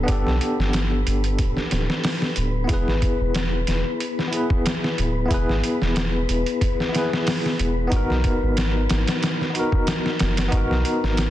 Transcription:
0.00 0.03 B3 medium
0.00 11.30 B3 medium
0.00 1.66 B3 medium
0.00 0.06 D4 medium
0.00 0.09 G4 medium
0.00 0.12 A4 medium
0.00 11.30 B4 medium
0.06 0.24 G1 medium
0.06 1.67 D4 medium
0.06 1.68 G4 medium
0.06 kick loud
0.06 closed hi-hat medium
0.12 1.70 A4 medium
0.27 0.40 B1 medium
0.27 snare soft
0.41 closed hi-hat medium
0.59 1.04 G1 medium
0.59 snare soft
0.73 snare loud
0.73 closed hi-hat medium
1.07 1.41 G1 medium
1.07 closed hi-hat medium
1.24 closed hi-hat soft
1.39 1.55 D1 medium
1.39 kick loud
1.39 closed hi-hat medium
1.57 snare soft
1.71 1.87 D1 medium
1.71 snare soft
1.71 closed hi-hat medium
1.90 snare soft
2.04 snare medium
2.04 open hi-hat medium
2.22 snare soft
2.36 2.66 D1 medium
2.36 closed hi-hat medium
2.64 4.26 B3 medium
2.64 4.28 E4 medium
2.69 2.85 E1 medium
2.69 4.29 G#4 medium
2.69 kick loud
2.69 closed hi-hat medium
2.73 4.31 B4 loud
2.88 3.01 G#1 medium
2.88 snare soft
3.02 kick medium
3.02 closed hi-hat medium
3.20 3.65 E1 medium
3.35 snare loud
3.35 closed hi-hat medium
3.67 3.83 E1 medium
3.67 snare soft
3.67 closed hi-hat medium
4.00 closed hi-hat medium
4.19 snare soft
4.28 5.24 B3 medium
4.28 5.26 E4 medium
4.33 5.27 G#4 medium
4.33 closed hi-hat medium
4.37 5.29 B4 medium
4.50 kick medium
4.66 snare medium
4.66 closed hi-hat medium
4.84 snare soft
4.98 5.27 D1 medium
4.98 closed hi-hat medium
5.25 6.87 B3 medium
5.25 6.89 E4 medium
5.31 5.46 E1 loud
5.31 6.90 G#4 medium
5.31 6.92 B4 medium
5.31 kick medium
5.31 closed hi-hat medium
5.49 5.62 G#1 medium
5.49 snare soft
5.64 closed hi-hat medium
5.82 6.26 E1 medium
5.82 snare soft
5.96 snare loud
5.96 closed hi-hat medium
6.29 6.44 E1 medium
6.29 closed hi-hat medium
6.46 closed hi-hat soft
6.61 kick loud
6.61 closed hi-hat medium
6.80 snare soft
6.89 7.86 B3 medium
6.89 7.87 E4 medium
6.95 7.89 G#4 medium
6.95 7.90 B4 medium
6.95 snare soft
6.95 closed hi-hat medium
7.13 snare medium
7.27 snare medium
7.27 open hi-hat medium
7.46 snare soft
7.59 7.88 E1 medium
7.59 closed hi-hat medium
7.87 9.49 B3 medium
7.87 9.50 D#4 medium
7.92 8.07 G#1 loud
7.92 9.52 F#4 medium
7.92 kick medium
7.92 closed hi-hat medium
7.96 9.53 A#4 loud
8.10 8.23 B1 medium
8.10 snare soft
8.24 kick medium
8.24 closed hi-hat medium
8.43 8.87 G#1 medium
8.57 snare loud
8.57 closed hi-hat medium
8.89 9.06 G#1 medium
8.89 snare loud
8.89 closed hi-hat medium
9.07 snare medium
9.07 closed hi-hat medium
9.23 snare medium
9.23 closed hi-hat medium
9.41 snare soft
9.50 10.46 B3 medium
9.50 10.48 D#4 medium
9.55 10.49 F#4 medium
9.55 closed hi-hat medium
9.59 10.51 A#4 medium
9.72 kick medium
9.87 snare loud
9.87 closed hi-hat medium
10.06 snare medium
10.19 10.49 F#1 medium
10.19 snare medium
10.19 closed hi-hat medium
10.37 snare medium
10.37 closed hi-hat medium
10.48 11.30 B3 medium
10.48 11.30 D#4 medium
10.48 closed hi-hat medium
10.52 10.68 G#1 medium
10.52 11.30 F#4 medium
10.52 kick loud
10.57 11.30 A#4 medium
10.71 10.84 B1 medium
10.71 snare soft
10.85 closed hi-hat medium
11.03 11.30 G#1 medium
11.03 snare soft
11.17 snare loud
11.17 closed hi-hat medium

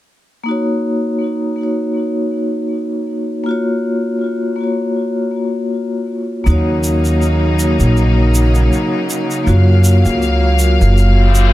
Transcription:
0.44 1.54 A#3 medium
0.44 1.55 D#4 medium
0.49 1.56 F#4 medium
0.49 1.58 C#5 loud
1.56 3.41 A#3 medium
1.56 3.42 D#4 medium
1.61 3.44 F#4 medium
1.61 3.45 C#5 medium
3.44 4.54 A#3 medium
3.44 4.55 F4 medium
3.49 4.56 F#4 medium
3.49 4.57 C#5 medium
4.56 6.41 A#3 medium
4.56 6.42 F4 medium
4.61 6.44 F#4 medium
4.61 6.45 C#5 medium
6.44 7.76 D#2 medium
6.44 11.53 C#3 medium
6.44 11.53 F#3 medium
6.44 7.54 A#3 medium
6.44 9.44 A#3 medium
6.44 7.55 D#4 medium
6.44 9.44 D#4 medium
6.44 shaker soft
6.49 7.56 F#4 medium
6.49 7.58 C#5 loud
6.84 shaker medium
7.05 shaker soft
7.22 shaker soft
7.57 9.41 A#3 medium
7.57 9.43 D#4 medium
7.57 shaker medium
7.61 9.44 F#4 medium
7.61 9.45 C#5 medium
7.79 8.68 A#1 medium
7.79 shaker medium
7.97 shaker soft
8.35 shaker loud
8.55 shaker soft
8.73 shaker soft
9.10 shaker medium
9.31 shaker medium
9.44 10.01 F#2 medium
9.44 10.54 A#3 medium
9.44 11.53 A#3 medium
9.44 10.55 F4 medium
9.44 11.53 F5 medium
9.44 shaker soft
9.49 10.56 F#4 medium
9.49 10.57 C#5 loud
9.84 shaker medium
10.05 10.76 C#2 medium
10.05 shaker soft
10.22 shaker soft
10.57 11.50 A#3 medium
10.57 11.51 F4 medium
10.57 shaker medium
10.62 11.52 F#4 medium
10.62 11.53 C#5 medium
10.81 11.53 F#1 medium
10.81 shaker soft
10.97 reverse cymbal medium
10.97 shaker soft
11.35 shaker medium

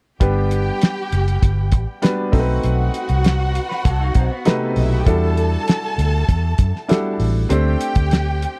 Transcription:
0.20 0.69 G1 medium
0.20 1.00 G3 medium
0.20 1.00 B3 medium
0.20 1.00 D4 medium
0.20 1.99 G4 medium
0.20 1.00 G4 medium
0.20 1.01 B4 medium
0.20 1.99 G5 medium
0.20 kick medium
0.20 closed hi-hat medium
0.51 closed hi-hat medium
0.81 snare medium
0.81 closed hi-hat medium
1.12 1.36 F#1 medium
1.12 closed hi-hat medium
1.28 closed hi-hat soft
1.43 1.73 G1 medium
1.43 kick medium
1.43 closed hi-hat medium
1.72 1.85 A1 medium
1.72 kick medium
1.72 closed hi-hat medium
2.02 2.33 G3 medium
2.02 2.33 B3 medium
2.02 2.33 D4 medium
2.02 2.31 F#4 medium
2.02 2.33 B4 medium
2.02 snare loud
2.02 closed hi-hat medium
2.32 2.58 B1 medium
2.32 3.30 A3 medium
2.32 3.30 C4 medium
2.32 3.30 D#4 medium
2.32 3.30 F#4 medium
2.32 4.51 F#4 medium
2.32 2.40 A4 medium
2.32 4.51 F#5 medium
2.32 kick medium
2.32 open hi-hat medium
2.39 3.33 B4 medium
2.63 2.88 B1 medium
2.63 closed hi-hat medium
2.94 closed hi-hat medium
3.09 3.58 C2 medium
3.09 closed hi-hat soft
3.24 snare loud
3.24 closed hi-hat medium
3.55 closed hi-hat medium
3.69 3.84 B4 medium
3.69 snare soft
3.85 4.09 C2 medium
3.85 3.99 F#4 medium
3.85 3.99 A4 medium
3.85 kick medium
3.85 closed hi-hat medium
4.00 4.14 D#4 medium
4.00 4.15 F#4 medium
4.14 4.28 B1 medium
4.14 4.30 C4 medium
4.14 4.30 D#4 medium
4.14 kick medium
4.14 closed hi-hat medium
4.31 5.03 B3 medium
4.45 4.86 C3 medium
4.45 4.86 A3 medium
4.45 4.86 D#4 medium
4.45 4.86 F#4 medium
4.45 4.86 B4 medium
4.45 snare loud
4.45 closed hi-hat medium
4.61 4.68 B3 medium
4.61 4.68 B4 medium
4.69 4.76 C4 medium
4.69 4.77 C5 medium
4.76 5.01 B1 medium
4.76 4.84 D#4 medium
4.76 4.84 D#5 medium
4.76 open hi-hat medium
4.83 4.91 E4 medium
4.83 4.91 E5 medium
4.91 4.99 F#4 medium
4.91 4.99 F#5 medium
4.99 5.07 G4 medium
4.99 5.07 G5 medium
5.06 5.56 E2 loud
5.06 5.86 G3 medium
5.06 5.87 D4 medium
5.06 5.87 E4 medium
5.06 5.87 F#4 medium
5.06 7.16 A4 medium
5.06 5.87 A4 medium
5.06 7.16 A5 loud
5.06 kick medium
5.06 closed hi-hat medium
5.37 closed hi-hat medium
5.68 snare loud
5.68 closed hi-hat medium
5.98 6.22 D2 medium
5.98 closed hi-hat medium
6.29 6.53 E2 medium
6.29 kick medium
6.29 closed hi-hat medium
6.58 6.71 F#2 medium
6.58 kick medium
6.58 closed hi-hat medium
6.76 snare soft
6.88 7.29 G3 medium
6.88 7.29 D4 medium
6.88 7.29 E4 medium
6.88 7.29 F#4 medium
6.88 7.30 A4 medium
6.88 snare loud
6.88 closed hi-hat medium
7.20 7.44 A1 medium
7.20 open hi-hat medium
7.49 7.75 D2 medium
7.49 8.30 A3 medium
7.49 8.30 C4 medium
7.49 8.30 D4 medium
7.49 8.60 G4 medium
7.49 8.30 G4 medium
7.49 8.30 C5 medium
7.49 8.60 G5 medium
7.49 closed hi-hat medium
7.81 closed hi-hat medium
7.95 8.45 D2 medium
7.95 kick medium
7.95 closed hi-hat soft
8.11 snare medium
8.11 closed hi-hat medium
8.42 closed hi-hat medium

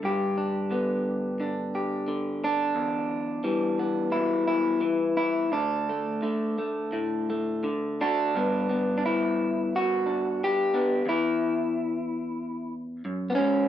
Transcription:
0.00 2.74 G2 medium
0.00 0.70 D3 medium
0.05 1.74 G4 medium
0.38 1.40 D4 soft
0.71 1.38 D3 soft
0.71 2.73 B3 soft
1.40 2.07 D3 soft
1.40 2.44 D4 soft
1.75 2.44 G4 soft
2.08 3.43 D3 soft
2.44 4.12 D4 medium
2.75 5.47 E2 medium
3.44 4.80 E3 medium
3.44 5.51 G3 soft
3.79 5.48 B3 soft
4.12 4.81 B2 soft
4.12 4.46 E4 medium
4.47 5.16 E4 medium
4.81 5.47 E3 medium
5.17 5.52 E4 medium
5.52 8.35 D2 medium
5.52 8.00 D4 medium
5.89 6.22 A3 soft
6.22 7.62 D3 medium
6.22 6.57 A3 soft
6.58 6.92 A3 soft
6.92 7.65 A2 soft
6.92 7.29 A3 soft
7.30 8.33 A3 soft
7.63 11.05 D3 medium
8.01 8.96 D4 medium
8.01 8.32 F#4 soft
8.35 11.01 G2 medium
8.35 8.69 B3 soft
8.70 10.72 B3 soft
8.98 9.05 D4 medium
9.06 9.73 E4 medium
9.76 10.41 F#4 medium
10.06 10.73 D4 soft
10.44 11.08 G4 loud
10.74 11.02 B3 soft
10.74 11.03 D4 soft
11.06 13.04 E2 medium
11.06 12.73 E4 medium
13.05 13.37 F#2 medium
13.30 13.35 B3 medium
13.35 13.68 G#2 medium
13.35 13.68 C#4 loud

